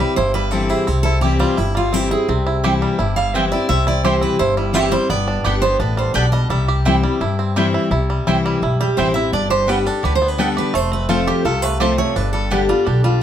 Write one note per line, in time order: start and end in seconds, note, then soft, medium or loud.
0.00 0.14 C3 medium
0.00 0.35 G3 medium
0.00 0.51 C4 medium
0.00 0.17 C4 medium
0.00 0.17 E4 medium
0.00 1.22 G4 medium
0.00 0.16 B4 loud
0.16 0.72 G1 medium
0.16 0.84 G2 loud
0.16 0.70 E4 medium
0.16 0.34 C5 loud
0.34 1.40 G3 medium
0.34 0.51 B4 loud
0.51 0.86 E3 medium
0.51 0.86 G3 medium
0.51 0.87 C4 medium
0.51 0.86 C4 medium
0.51 0.86 E4 loud
0.51 0.69 A4 medium
0.69 1.05 E4 medium
0.69 0.87 G#4 medium
0.87 1.42 C2 loud
0.87 1.55 C3 medium
0.87 1.92 C4 medium
0.87 1.03 G4 medium
1.03 1.57 E4 medium
1.03 1.21 A4 loud
1.21 1.57 E3 medium
1.21 1.57 G3 medium
1.21 1.57 C4 loud
1.21 1.57 E4 loud
1.21 1.39 G4 medium
1.21 2.62 G4 medium
1.39 1.75 G3 medium
1.39 1.58 F4 medium
1.57 2.12 G1 medium
1.57 2.25 G2 medium
1.57 2.11 E4 medium
1.57 1.75 E4 medium
1.75 2.82 G3 medium
1.75 1.94 F4 medium
1.93 2.10 E3 medium
1.93 2.11 G3 loud
1.93 2.29 C4 medium
1.93 2.11 C4 loud
1.93 2.10 E4 loud
1.93 2.11 G4 medium
2.11 2.29 C4 soft
2.11 2.46 E4 medium
2.11 2.28 E4 medium
2.11 2.28 G#4 medium
2.28 2.83 C2 loud
2.28 2.96 C3 medium
2.28 3.34 C4 medium
2.47 2.98 E4 medium
2.64 2.97 E3 medium
2.64 2.98 G3 medium
2.64 2.73 C4 medium
2.64 2.98 C4 loud
2.64 2.73 E4 medium
2.64 2.98 E4 medium
2.64 4.04 G4 medium
2.64 2.73 C5 medium
2.64 2.73 G5 loud
2.82 3.17 G3 medium
2.99 3.53 G1 medium
2.99 3.66 G2 loud
2.99 3.48 E4 medium
3.16 4.57 G3 medium
3.16 3.35 F5 loud
3.34 3.52 E3 medium
3.34 3.52 G3 medium
3.34 3.68 C4 medium
3.34 3.44 C4 loud
3.34 3.52 C4 medium
3.34 3.44 E4 medium
3.34 3.51 E4 loud
3.34 3.44 C5 loud
3.34 3.51 E5 medium
3.34 3.44 G5 loud
3.52 3.70 C4 soft
3.52 3.86 E4 medium
3.52 3.69 E4 medium
3.52 3.68 D5 medium
3.69 4.23 C2 loud
3.69 4.36 C3 medium
3.69 4.19 C4 medium
3.69 3.86 E5 loud
3.87 4.36 E4 medium
3.87 4.04 D5 medium
4.03 4.37 E3 medium
4.03 4.38 G3 medium
4.03 4.14 C4 medium
4.03 4.38 C4 medium
4.03 4.38 E4 loud
4.03 4.14 E4 medium
4.03 5.44 G4 medium
4.03 4.22 C5 medium
4.03 4.14 C5 medium
4.03 4.14 G5 medium
4.21 4.71 C4 medium
4.21 4.39 B4 medium
4.39 4.94 G1 loud
4.39 5.07 G2 medium
4.39 4.73 E4 medium
4.39 4.57 C5 loud
4.57 4.92 G3 medium
4.57 4.74 E4 medium
4.73 4.91 E3 medium
4.73 4.91 G3 loud
4.73 4.92 C4 loud
4.73 4.84 C4 medium
4.73 5.10 E4 medium
4.73 4.91 E4 loud
4.73 4.84 E4 loud
4.73 4.92 G4 medium
4.73 4.84 C5 loud
4.73 4.85 G5 loud
4.92 5.97 G3 medium
4.92 5.10 C4 soft
4.92 5.09 E4 medium
4.92 5.09 C5 loud
5.10 5.37 G1 medium
5.10 5.77 G2 medium
5.10 5.59 B3 medium
5.10 5.59 D5 loud
5.28 5.77 D4 medium
5.44 5.75 G1 medium
5.44 5.62 G3 medium
5.44 5.54 B3 medium
5.44 5.63 B3 medium
5.44 5.63 D4 loud
5.44 6.68 G4 medium
5.44 5.54 G4 medium
5.44 5.62 G4 loud
5.44 5.55 D5 medium
5.44 5.55 G5 medium
5.62 6.12 B3 medium
5.62 5.81 D4 soft
5.62 5.80 G4 medium
5.62 5.79 C5 loud
5.79 6.10 A1 medium
5.79 6.14 A2 loud
5.79 6.14 D4 medium
5.79 5.97 B4 medium
5.97 6.33 G3 medium
5.97 6.14 C5 medium
6.14 6.45 B1 medium
6.14 6.49 B2 medium
6.14 6.24 B3 medium
6.14 6.51 D4 medium
6.14 6.24 G4 loud
6.14 6.32 D5 medium
6.14 6.25 D5 loud
6.14 6.25 G5 loud
6.32 6.50 G3 medium
6.32 6.50 D#5 medium
6.50 7.04 C2 loud
6.50 7.18 C3 medium
6.50 7.00 G3 medium
6.50 7.00 E5 medium
6.68 7.18 G4 medium
6.85 7.03 E3 medium
6.85 7.03 G3 medium
6.85 6.95 C4 medium
6.85 7.04 C4 loud
6.85 6.95 E4 loud
6.85 7.20 E4 medium
6.85 7.03 E4 medium
6.85 6.95 C5 medium
6.85 6.95 G5 loud
7.03 7.53 G3 medium
7.03 7.22 C4 soft
7.03 7.21 E4 medium
7.21 7.75 G2 medium
7.21 7.88 G2 loud
7.21 7.71 E4 medium
7.39 7.88 C4 medium
7.56 7.90 E3 medium
7.56 7.92 G3 medium
7.56 7.90 G3 loud
7.56 7.66 C4 medium
7.56 7.90 C4 loud
7.56 7.66 E4 loud
7.56 7.90 E4 loud
7.56 7.66 C5 medium
7.56 7.66 G5 loud
7.74 7.90 E4 medium
7.91 8.18 C2 loud
7.91 8.59 C3 medium
7.91 8.26 E4 medium
8.10 8.45 G3 medium
8.27 8.57 C2 medium
8.27 8.61 E3 medium
8.27 8.61 G3 medium
8.27 8.36 C4 medium
8.27 8.61 C4 medium
8.27 8.62 E4 medium
8.27 8.37 E4 medium
8.27 8.62 E4 loud
8.27 8.37 C5 medium
8.27 8.37 G5 medium
8.46 8.79 G3 medium
8.62 8.92 B1 medium
8.62 9.30 G2 medium
8.62 9.12 E4 medium
8.81 9.30 G3 medium
8.81 8.97 G4 medium
8.97 9.28 A1 medium
8.97 9.15 E3 medium
8.97 9.15 G3 medium
8.97 9.07 C4 medium
8.97 9.33 C4 medium
8.97 9.15 C4 medium
8.97 9.07 E4 medium
8.97 9.13 E4 loud
8.97 9.14 C5 medium
8.97 9.07 C5 loud
8.97 9.07 G5 medium
9.14 9.32 C4 soft
9.14 9.32 E4 medium
9.14 9.33 E4 medium
9.14 9.32 E5 loud
9.33 9.87 G1 loud
9.33 10.00 G2 medium
9.33 9.83 D4 medium
9.33 9.50 D5 medium
9.50 10.00 G4 medium
9.50 9.69 C5 loud
9.67 9.85 G3 medium
9.67 10.18 G3 medium
9.67 9.85 B3 medium
9.67 9.77 B3 medium
9.67 9.85 D4 medium
9.67 9.77 G4 medium
9.67 9.84 G4 loud
9.67 9.86 B4 medium
9.67 9.78 D5 loud
9.67 9.78 G5 medium
9.85 10.36 D4 medium
9.85 10.04 D4 soft
9.85 10.03 G4 medium
9.85 10.03 A4 medium
10.03 10.58 D2 medium
10.03 10.71 D3 medium
10.03 10.54 G4 medium
10.03 10.15 B4 medium
10.15 10.28 C5 loud
10.22 10.71 B3 medium
10.28 10.40 B4 medium
10.38 10.72 G3 medium
10.38 10.48 B3 medium
10.38 10.73 B3 medium
10.38 10.74 D4 medium
10.38 10.73 D4 medium
10.38 10.48 G4 medium
10.38 10.73 G4 loud
10.38 10.57 A4 medium
10.38 10.48 D5 medium
10.38 10.49 G5 loud
10.57 10.74 G4 medium
10.57 10.75 B4 medium
10.74 11.28 F1 medium
10.74 11.42 F2 medium
10.74 11.30 A3 medium
10.74 10.92 C5 medium
10.92 11.41 C4 medium
10.92 11.08 B4 medium
11.09 11.43 F3 medium
11.09 11.43 A3 medium
11.09 11.19 C4 medium
11.09 11.44 C4 loud
11.09 11.44 F4 medium
11.09 11.19 F4 medium
11.09 11.44 F4 medium
11.09 11.27 A4 medium
11.09 11.19 C5 medium
11.09 11.19 A5 loud
11.27 11.77 G4 medium
11.27 11.45 G4 loud
11.45 11.99 C2 medium
11.45 12.12 C3 medium
11.45 11.95 F4 medium
11.45 11.62 A4 medium
11.62 11.98 A3 medium
11.62 11.80 B4 medium
11.80 12.14 F3 medium
11.80 12.14 A3 medium
11.80 11.90 C4 medium
11.80 12.14 C4 medium
11.80 11.90 F4 medium
11.80 12.15 F4 loud
11.80 12.16 G4 medium
11.80 11.98 C5 medium
11.80 11.90 C5 loud
11.80 11.90 A5 loud
11.98 12.34 A3 medium
11.98 12.16 C#5 loud
12.16 12.70 G1 medium
12.16 12.84 G2 medium
12.16 12.52 D4 medium
12.16 12.32 B4 medium
12.33 12.68 G3 medium
12.33 12.50 A4 medium
12.51 12.69 D3 medium
12.51 12.69 G3 medium
12.51 12.60 B3 medium
12.51 12.69 B3 medium
12.51 12.85 D4 medium
12.51 12.60 G4 medium
12.51 12.69 G4 medium
12.51 12.69 G4 loud
12.51 12.61 D5 medium
12.51 12.61 A5 medium
12.69 13.03 G3 medium
12.69 12.87 B3 soft
12.69 12.87 F4 medium
12.69 12.86 G4 medium
12.87 13.17 B1 medium
12.87 13.20 D3 medium
12.87 13.23 D4 medium
12.87 13.04 G4 medium
13.04 13.23 G3 medium
13.04 13.21 F4 medium